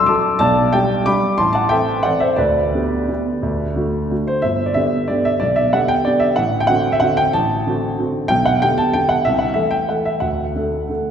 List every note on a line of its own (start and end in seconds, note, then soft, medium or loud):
0.00 0.12 C2 medium
0.00 0.08 F#3 medium
0.00 0.08 D4 medium
0.00 0.09 A4 medium
0.00 0.08 A5 medium
0.00 0.11 C6 loud
0.00 0.11 E6 loud
0.06 0.38 F#3 soft
0.06 0.38 D4 medium
0.06 0.38 A4 medium
0.06 0.37 A5 medium
0.06 0.40 D6 medium
0.39 0.72 B1 medium
0.39 0.71 D5 medium
0.39 0.72 A5 loud
0.73 1.03 G3 medium
0.73 1.03 D4 medium
0.73 1.04 G4 medium
0.73 1.04 D5 medium
0.73 1.06 G5 medium
1.06 1.35 G3 soft
1.06 1.35 D4 soft
1.06 1.36 G4 soft
1.06 1.36 B5 medium
1.06 1.38 D6 loud
1.38 1.70 A1 medium
1.38 1.51 A5 medium
1.38 1.54 C6 loud
1.53 1.70 F#5 medium
1.53 1.70 A5 loud
1.69 2.02 E3 soft
1.69 2.02 C4 soft
1.69 2.02 A4 medium
1.69 2.02 E5 medium
1.69 2.04 G5 loud
2.03 2.36 E3 soft
2.03 2.36 C4 soft
2.03 2.36 A4 soft
2.03 2.21 D5 medium
2.03 2.21 F#5 medium
2.20 2.37 C5 medium
2.20 2.38 E5 medium
2.36 2.72 D2 medium
2.36 4.07 B4 medium
2.36 4.10 D5 medium
2.75 3.06 D3 soft
2.75 3.06 B3 soft
2.75 3.06 G4 medium
3.08 3.40 D3 soft
3.08 3.40 B3 soft
3.08 3.40 G4 soft
3.43 3.76 D2 medium
3.75 4.07 D3 soft
3.75 4.07 A3 soft
3.75 4.07 F#4 soft
4.10 4.41 D3 soft
4.10 4.42 A3 soft
4.10 4.42 F#4 soft
4.27 4.44 C5 medium
4.42 4.76 G1 medium
4.42 4.68 E5 medium
4.66 4.76 D5 medium
4.74 5.06 D3 soft
4.74 5.07 B3 soft
4.74 5.07 G4 soft
4.74 5.09 E5 medium
5.08 5.39 D3 soft
5.08 5.39 B3 soft
5.08 5.39 G4 soft
5.08 5.26 D5 medium
5.25 5.42 E5 medium
5.40 5.73 B1 medium
5.40 5.57 D5 medium
5.56 5.73 E5 medium
5.73 6.03 D3 soft
5.73 6.03 B3 soft
5.73 6.04 G4 soft
5.73 5.90 F#5 medium
5.88 6.06 G5 loud
6.05 6.35 D3 soft
6.05 6.35 B3 soft
6.05 6.36 G4 soft
6.05 6.22 D5 medium
6.20 6.37 E5 medium
6.36 6.68 A1 medium
6.36 6.61 F#5 loud
6.60 6.69 G5 medium
6.67 6.99 D3 soft
6.67 6.99 C4 soft
6.67 6.99 F#4 medium
6.67 6.93 F#5 loud
6.92 7.02 E5 medium
7.00 7.31 D3 soft
7.00 7.31 C4 soft
7.00 7.31 F#4 soft
7.00 7.18 F#5 loud
7.17 7.34 G5 loud
7.33 7.65 A1 medium
7.33 7.98 A5 loud
7.67 7.96 D3 soft
7.67 7.96 C4 soft
7.67 7.96 F#4 medium
7.99 8.28 D3 soft
7.99 8.28 C4 soft
7.99 8.28 F#4 soft
8.28 8.61 B1 medium
8.28 8.45 G5 loud
8.46 8.62 F#5 loud
8.62 8.92 D3 soft
8.62 8.92 B3 soft
8.62 8.92 G4 medium
8.62 8.78 G5 loud
8.78 8.94 A5 loud
8.93 9.23 D3 soft
8.93 9.24 B3 soft
8.93 9.23 G4 soft
8.93 9.10 G5 loud
9.09 9.25 F#5 medium
9.25 9.56 C2 medium
9.25 9.41 E5 loud
9.39 9.56 F#5 medium
9.54 9.86 E3 soft
9.54 9.86 A3 soft
9.54 9.86 A4 soft
9.54 9.72 E5 medium
9.71 9.89 G5 medium
9.89 10.19 E3 soft
9.89 10.20 A3 soft
9.89 10.20 A4 soft
9.89 10.06 F#5 medium
10.05 10.22 E5 medium
10.20 10.54 D2 soft
10.20 11.11 F#5 medium
10.55 10.86 D3 soft
10.55 10.86 A3 soft
10.55 10.87 A4 soft
10.89 11.11 D3 soft
10.89 11.11 A3 soft
10.89 11.11 A4 soft